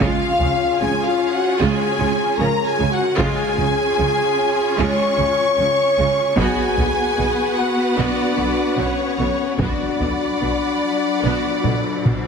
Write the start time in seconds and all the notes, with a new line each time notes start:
0.00 C#2 C#3 G#3 C#4 F4 G#4 C#5 F5, taiko
0.40 C#2 C#3 G#3, taiko low
0.79 C#2 C#3 F3 C#4 G#4 G#5
1.05 F4 F5
1.31 F#4 F#5
1.37 F#5
1.58 C#2 C#3 G#3 F4 G#4 G#5
1.63 G#5
2.00 C#2 C#3 G#3
2.38 C#2 C#3 F3 C#4 A#4 A#5
2.67 G#4 G#5
2.79 C#2 C#3 G#3
2.90 F#4 F#5
2.96 F#5
3.18 C#2 C#3 G#3 C#4 F4 G#4 C#5 G#5, taiko
3.58 C#2 C#3 G#3, taiko low
3.99 C#2 C#3 F3 C#4
4.78 C#2 C#3 G#3 F4 C#5 C#6
5.18 C#2 C#3 G#3
5.57 C#2 C#3 F3 C#4
5.99 C#2 C#3 G#3
6.37 B1 B2 B3 F#4 G#4 B4 F#5 G#5, taiko
6.77 B1 B2 D3 B3, taiko low
7.18 B1 B2 F#3 D4
7.55 F#4 F#5
7.96 B1 B2 B3 D4 F#4 D5
8.37 B1 B2 D3 B3
8.76 B1 B2 F#3 C#4 D4 C#5
9.18 B1 B2 D3 B3
9.57 B1 B2 F#3 B3 D4 F#4 D5 B5, taiko
9.61 F#5
10.00 B1 B2 D3 B3, taiko low
10.41 B1 B2 F#3 D4
11.23 B1 B2 B3 F#4
11.64 B1 B2 D3 B3, taiko mid
12.05 B1 B2 F#3 D4, taiko mid